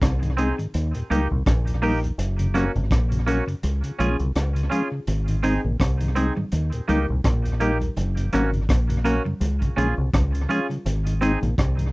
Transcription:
0.02 C2, kick, cross-stick, closed hi-hat
0.22 G#2 D#3 D#4 G#4, closed hi-hat
0.37 G#3 C4 D#4 G#4, closed hi-hat
0.58 G#2 D#3, muted clean electric guitar stroke, closed hi-hat
0.74 D#2, closed hi-hat
0.95 D#2 A#2 G4 A#4, closed hi-hat
1.10 C#2 G3 A#3 D#4 G4 A#4, closed hi-hat
1.31 C2 D#2 A#2
1.46 A#1, kick, cross-stick, closed hi-hat
1.67 D#2 A#2, closed hi-hat
1.82 G3 A#3 D#4 G4 A#4, open hi-hat
2.03 D#2 A#2, closed hi-hat
2.18 F#1, closed hi-hat
2.39 F#2 C#3, closed hi-hat
2.54 F#3 A#3 C#4 F#4 A#4, cross-stick, closed hi-hat
2.75 G#1 F#2 C#3, closed hi-hat
2.91 A#1, kick, cross-stick, closed hi-hat
3.11 F#2 C#3 F#4 A#4, closed hi-hat
3.27 F#3 A#3 C#4 F#4 A#4, closed hi-hat
3.47 F#2 C#3, muted clean electric guitar stroke, closed hi-hat
3.63 C#2, closed hi-hat
3.83 C#3 F4 G#4, closed hi-hat
3.98 A#1 F3 G#3 C#4 F4 G#4, closed hi-hat
4.19 C2 C#3, closed hi-hat
4.35 C#2, cross-stick, closed hi-hat
4.55 C#3, closed hi-hat
4.70 F3 G#3 C#4 F4 G#4, closed hi-hat
4.92 C#3 F4 G#4
5.07 G#1, closed hi-hat, low conga
5.28 G#2 D#3, closed hi-hat
5.43 G#3 C4 D#4 G#4, closed hi-hat
5.64 A#1 G#2 D#3
5.80 C2, kick, cross-stick, closed hi-hat
6.01 G#2 D#3 D#4 G#4, closed hi-hat
6.15 G#3 C4 D#4 G#4, closed hi-hat, high conga
6.36 G#2 D#3, muted clean electric guitar stroke, high conga
6.52 D#2, closed hi-hat, low conga
6.72 D#2 A#2 G4 A#4, closed hi-hat
6.88 C#2 G3 A#3 D#4 G4 A#4, closed hi-hat, low conga
7.09 C2 D#2 A#2
7.24 A#1, kick, cross-stick, closed hi-hat, high conga
7.45 D#2 A#2, closed hi-hat
7.60 G3 A#3 D#4 G4 A#4, closed hi-hat
7.80 D#2 A#2, closed hi-hat, high conga
7.96 F#1, closed hi-hat, low conga
8.17 F#2 C#3, closed hi-hat
8.32 G#1 F#3 A#3 C#4 F#4 A#4, cross-stick, closed hi-hat
8.53 F#2 C#3, closed hi-hat
8.69 A#1, kick, cross-stick, closed hi-hat
8.89 F#2 C#3 F#4 A#4, closed hi-hat
9.04 F#3 A#3 C#4 F#4 A#4, closed hi-hat
9.25 F#2 C#3, high conga
9.41 C#2, closed hi-hat, low conga
9.61 C#3 F4 G#4, kick, closed hi-hat
9.77 A#1 F3 G#3 C#4 F4 G#4, closed hi-hat, low conga
9.97 C2 C#3
10.14 C#2, kick, cross-stick, closed hi-hat, high conga
10.34 C#3, closed hi-hat
10.49 F3 G#3 C#4 F4 G#4, closed hi-hat
10.69 C#3 F4 G#4, closed hi-hat, high conga
10.86 G#1, closed hi-hat, low conga
11.06 G#2 D#3, closed hi-hat
11.21 G#3 C4 D#4 G#4, closed hi-hat
11.41 A#1 G#2 D#3, closed hi-hat
11.58 C2, kick, cross-stick, closed hi-hat
11.77 G#2 D#3 D#4 G#4, closed hi-hat

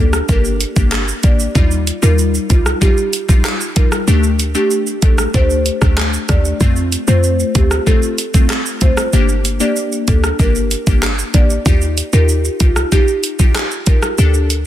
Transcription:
Already playing: D2 A#3 D4 G4
0.13 cross-stick, shaker
0.28 G1 A#3 D4 G4 A#4, kick, shaker
0.45 shaker
0.61 closed hi-hat, shaker
0.76 G1 A#3 D4 G4, kick, shaker
0.92 cross-stick, clap, shaker
1.08 shaker
1.23 A1 A#3 D4 G4 D5, kick, closed hi-hat, shaker
1.40 shaker
1.55 D#2 G3 D#4 F4, kick, shaker
1.71 shaker
1.87 closed hi-hat, shaker
2.02 D#2 G3 D#4 F4 A#4, shaker
2.19 shaker
2.35 shaker
2.50 C2 G3 D#4 F4, kick, closed hi-hat, shaker
2.66 cross-stick, shaker
2.81 G3 D#4 F4 G4, kick, shaker
2.97 shaker
3.13 closed hi-hat, shaker
3.29 G3 D#4 F4, kick, shaker
3.45 cross-stick, clap, shaker
3.61 shaker
3.76 A#1 G3 D#4 F4 A#4, kick, closed hi-hat, shaker
3.92 cross-stick, shaker
4.07 D2 A3 D4 G4, shaker
4.23 shaker
4.39 closed hi-hat, shaker
4.55 A3 D4 G4, shaker
4.71 shaker
4.87 shaker
5.02 A1 A3 D4 G4 A4, kick, closed hi-hat, shaker
5.18 cross-stick, shaker
5.34 D2 A3 D4 G4 C5, kick, shaker
5.50 shaker
5.66 closed hi-hat, shaker
5.81 D2 A3 D4 G4, kick, cross-stick, shaker
5.97 cross-stick, clap, shaker
6.14 shaker
6.29 D#2 A3 D4 G4 D5, kick, cross-stick, closed hi-hat, shaker
6.45 shaker
6.61 F2 A3 C4 F4, kick, shaker
6.76 shaker
6.92 closed hi-hat, shaker
7.08 F2 A3 C4 F4 C5, shaker
7.24 shaker
7.40 shaker
7.55 D2 A3 C4 F4 G4, kick, closed hi-hat, shaker
7.71 cross-stick, shaker
7.86 A3 C4 F4 A4, kick, shaker
8.03 shaker
8.18 closed hi-hat, shaker
8.34 A3 C4 F4, kick, shaker
8.50 cross-stick, clap, shaker
8.66 shaker
8.81 C2 A3 C4 F4 C5, kick, closed hi-hat, shaker
8.97 cross-stick, shaker
9.13 G1 A#3 D4 G4, shaker
9.29 shaker
9.45 closed hi-hat, shaker
9.60 A#3 D4 G4 D5, shaker
9.76 shaker
9.92 shaker
10.08 D2 A#3 D4 G4 A4, kick, closed hi-hat, shaker
10.24 cross-stick, shaker
10.39 G1 A#3 D4 G4 A#4, kick, shaker
10.55 shaker
10.71 closed hi-hat, shaker
10.87 G1 A#3 D4 G4, kick, shaker
11.03 cross-stick, clap, shaker
11.19 shaker
11.34 A1 A#3 D4 G4 D5, kick, closed hi-hat, shaker
11.50 shaker
11.66 D#2 D#4 F4 G4, kick, shaker
11.81 shaker
11.98 closed hi-hat, shaker
12.13 D#2 D#4 F4 G4 A#4, shaker
12.29 shaker
12.45 shaker
12.60 C2 D#4 F4 G4, kick, closed hi-hat, shaker
12.76 cross-stick, shaker
12.92 D#4 F4 G4, kick, shaker
13.08 shaker
13.24 closed hi-hat, shaker
13.39 D#4 F4 G4, kick, shaker
13.55 cross-stick, clap, shaker
13.71 shaker
13.86 A#1 D#4 F4 G4 A#4, kick, closed hi-hat, shaker
14.02 cross-stick, shaker
14.18 D2 D4 G4 A4, shaker
14.34 shaker
14.50 closed hi-hat, shaker

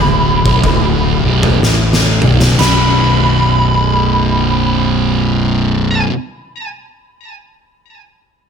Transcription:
Already playing: D1 D2 B5
0.45 B0 B1, kick
0.63 D1 D2, kick, floor tom
1.24 B0 B1
1.43 floor tom, mid tom
1.61 A1 A2, snare
1.93 snare
2.22 B0 B1, mid tom
2.42 snare
2.58 B0 B1 F#2 B5, snare, china
2.62 B2

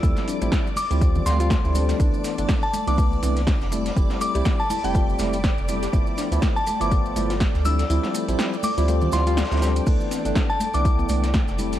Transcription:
Already playing: A4 D5 D6
0.03 D2 F3 G3 A3 C4 E4, kick, closed hi-hat, maracas
0.17 snare, maracas
0.26 D4 C6, closed hi-hat, open hi-hat, maracas
0.41 A1 F3 G3 A3 C4 E4, closed hi-hat, maracas
0.52 E4, kick, snare, closed hi-hat, maracas
0.67 maracas
0.76 D6, open hi-hat, muted conga, high conga, maracas
0.90 D2 F3 G3 C4 E4, closed hi-hat, maracas
1.01 F3 G3, kick, closed hi-hat, maracas
1.15 low conga, maracas
1.26 D2 F3 G3 A3 C4 F4 C6, snare, closed hi-hat, open hi-hat, high conga, maracas
1.40 F3 G3 C4 F4, closed hi-hat, maracas
1.50 A3, kick, snare, closed hi-hat, maracas
1.64 D2 F3 G3 C4 E4, maracas
1.75 F3 G3 C4 D4, closed hi-hat, open hi-hat, muted conga, maracas
1.89 A3, snare, closed hi-hat, maracas
1.99 C2 E3 A3 B3 D4, kick, closed hi-hat, maracas
2.14 D5, maracas
2.24 A3, snare, closed hi-hat, open hi-hat, maracas
2.38 G1 E3 A3 B3 D4, closed hi-hat, maracas
2.49 kick, snare, closed hi-hat, maracas
2.62 A5, maracas
2.68 G5
2.73 A3, closed hi-hat, open hi-hat, muted conga, high conga, maracas
2.78 B5
2.87 C2 E3 A3 B3 D4 E4 D6, closed hi-hat, maracas
2.98 E3 A3 B3 E4, kick, closed hi-hat, maracas
3.13 maracas
3.22 C2 E3 A3 B3 C4 D4, closed hi-hat, open hi-hat, high conga, maracas
3.36 snare, closed hi-hat, maracas
3.47 D4, kick, snare, closed hi-hat, maracas
3.61 F1, snare, maracas
3.72 G3 A3 C4 E4, closed hi-hat, open hi-hat, muted conga, maracas
3.86 snare, closed hi-hat, maracas
3.96 F1 G3 A3 C4 E4, kick, closed hi-hat, maracas
4.10 snare, maracas
4.21 A3 D6, closed hi-hat, open hi-hat, maracas
4.35 C2 G3 A3 C4 E4 G4, closed hi-hat, maracas
4.45 A3, kick, snare, closed hi-hat, maracas
4.60 A5, maracas
4.70 E4 A5, open hi-hat, muted conga, high conga, maracas
4.84 F1 G3 A3 C4 E4 G5, closed hi-hat, maracas
4.94 G3 A3 C4 F4, kick, closed hi-hat, maracas
5.10 maracas
5.19 F1 G3 A3 C4 E4, snare, closed hi-hat, open hi-hat, high conga, maracas
5.33 closed hi-hat, maracas
5.44 kick, snare, closed hi-hat, maracas
5.58 F1, maracas
5.68 G3 A3 C4 E4, closed hi-hat, open hi-hat, muted conga, maracas
5.83 G4, snare, closed hi-hat, maracas
5.93 G1 F3 A3 B3 E4, kick, closed hi-hat, maracas
6.07 maracas
6.18 D4, snare, closed hi-hat, open hi-hat, maracas
6.31 D2 F3 A3 B3 E4, closed hi-hat, maracas
6.42 E4, kick, snare, closed hi-hat, maracas
6.56 A5, maracas
6.67 A3, closed hi-hat, open hi-hat, muted conga, high conga, maracas
6.80 G1 F3 A3 B3 E4 D6, closed hi-hat, maracas
6.91 kick, closed hi-hat, maracas
7.05 maracas
7.16 G1 F3 A3 B3 E4, closed hi-hat, open hi-hat, high conga, maracas
7.30 F4, snare, closed hi-hat, maracas
7.40 A3, kick, snare, closed hi-hat, maracas
7.55 D2, snare, maracas
7.65 F3 G3 C4 D4 E4 E6, closed hi-hat, open hi-hat, muted conga, maracas
7.79 snare, closed hi-hat, maracas
7.89 D2 F3 G3 C4 E4, closed hi-hat, maracas
8.03 snare, maracas
8.14 A3, closed hi-hat, open hi-hat, maracas
8.28 A1 F3 G3 C4 E4, closed hi-hat, maracas
8.39 snare, closed hi-hat, maracas
8.53 maracas
8.63 A3 D6, open hi-hat, muted conga, high conga, maracas
8.77 D2 F3 G3 C4 E4 F4, closed hi-hat, maracas
8.88 F3 G3 A3 C4 F4, closed hi-hat, maracas
9.01 low conga, maracas
9.12 D2 F3 G3 C4 E4 F4 C6, snare, closed hi-hat, open hi-hat, high conga, maracas
9.26 F3 G3 C4 F4, closed hi-hat, maracas
9.37 F4, snare, closed hi-hat, maracas
9.44 snare, closed hi-hat
9.51 D2 F3 G3 C4 E4, snare, closed hi-hat, maracas
9.56 snare, closed hi-hat
9.62 F3 G3 C4 D4, snare, closed hi-hat, open hi-hat, muted conga, maracas
9.76 closed hi-hat, maracas
9.86 C2 E3 A3 B3 D4 D5 D6, kick, closed hi-hat, crash, maracas
10.01 maracas
10.11 C4, snare, closed hi-hat, open hi-hat, maracas
10.25 G1 E3 A3 B3 D4, closed hi-hat, maracas
10.35 D4, kick, snare, closed hi-hat, maracas
10.50 A5, maracas
10.55 B5
10.60 A3, closed hi-hat, open hi-hat, muted conga, high conga, maracas
10.74 C2 E3 A3 B3 D4 D6, closed hi-hat, maracas
10.85 E3 A3 E4, kick, closed hi-hat, maracas
10.99 B3, maracas
11.09 C2 E3 A3 B3 D4, closed hi-hat, open hi-hat, high conga, maracas
11.24 E4, snare, closed hi-hat, maracas
11.34 A3, kick, snare, closed hi-hat, maracas
11.48 F1, snare, maracas
11.58 G3 A3 C4 E4, closed hi-hat, open hi-hat, muted conga, maracas
11.73 snare, closed hi-hat, maracas

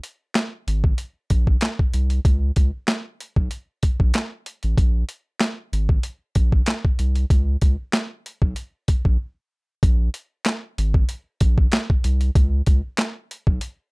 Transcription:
0.04 closed hi-hat
0.35 snare, clap, closed hi-hat
0.67 G#1, closed hi-hat
0.84 kick
0.98 closed hi-hat
1.30 A#1, kick, closed hi-hat
1.47 kick
1.61 snare, clap, closed hi-hat
1.79 kick
1.94 C2, closed hi-hat
2.10 closed hi-hat
2.25 C#2, kick, closed hi-hat
2.56 C#2, kick, closed hi-hat
2.88 snare, clap, closed hi-hat
3.20 closed hi-hat
3.36 B1, kick
3.51 closed hi-hat
3.83 kick, closed hi-hat
4.00 A#1, kick
4.14 snare, clap, closed hi-hat
4.46 closed hi-hat
4.63 A1, closed hi-hat
4.78 A#1, kick, closed hi-hat
5.09 closed hi-hat
5.40 snare, clap, closed hi-hat
5.73 G#1, closed hi-hat
5.89 kick
6.03 closed hi-hat
6.35 A#1, kick, closed hi-hat
6.52 kick
6.66 snare, clap, closed hi-hat
6.85 kick
6.99 C2, closed hi-hat
7.15 closed hi-hat
7.30 C#2, kick, closed hi-hat
7.62 C#2, kick, closed hi-hat
7.93 snare, clap, closed hi-hat
8.26 closed hi-hat
8.42 B1, kick
8.56 closed hi-hat
8.88 kick, closed hi-hat
9.05 A#1, kick
9.83 A#1, kick, closed hi-hat
10.14 closed hi-hat
10.46 snare, clap, closed hi-hat
10.78 G#1, closed hi-hat
10.94 kick
11.09 closed hi-hat
11.41 A#1, kick, closed hi-hat
11.58 kick
11.72 snare, clap, closed hi-hat
11.90 kick
12.04 C2, closed hi-hat
12.21 closed hi-hat
12.35 C#2, kick, closed hi-hat
12.66 C#2, kick, closed hi-hat
12.98 snare, clap, closed hi-hat
13.31 closed hi-hat
13.47 B1, kick
13.61 closed hi-hat

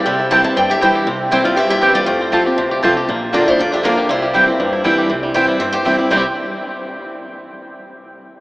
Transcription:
Already playing: E4 G4
0.06 C2 C3 G3 G4 E5
0.19 E4
0.30 E3 G3 C4 E4 C5 G5 A5
0.44 E4 C5 A5
0.56 G2 G3 C5 G5
0.70 G4 E5
0.81 E3 G3 C4 E4 C5 G5
0.95 G4
1.06 C2 C3 C4
1.31 E3 G3 C4 E4 C5 G5
1.44 G3 C4 E4 F4 D5
1.56 G2 C4 G4 E5
1.69 E4 G4 E5
1.81 E3 G3 C4 E4 G4 C5 G5
1.94 G3 F4 D5
2.06 F2 A3 F4 C5
2.21 C4
2.32 F3 A3 C4 F4 C5 A5
2.45 C4 F4 G4
2.58 D2 C3 C4
2.71 G4
2.82 C2 F3 A3 C4 F4 C5 A5
2.96 C4 F4 G4
3.08 A#1 A#2 A#3
3.33 D3 A#3 D4 F4 A#4 D5 A#5
3.46 D4 E4 F4 C5
3.58 F2 A#3 F4 D5
3.72 D4 G4 E5
3.83 D3 A#3 D4 F4 A#4 D5 F5 A#5
3.97 G4
4.09 C2 C3 G3 E4 C5
4.22 G4
4.34 E3 G3 C4 E4 C5 G5
4.47 C4 E4
4.59 G1 G2 G3
4.73 E4
4.84 E3 G3 C4 E4 C5 G5
4.98 G4
5.10 C2 C3 E3
5.23 G3
5.34 E3 G3 C4 E4 C5 G5
5.48 G3
5.60 G2 C4 E5
5.73 G4 C5
5.85 E3 G3 C4 E4 C5 G5
5.98 G3 C4 E4
6.10 C2 C3 E3 G3 C4 E4 C5 G5
6.15 E4 G4

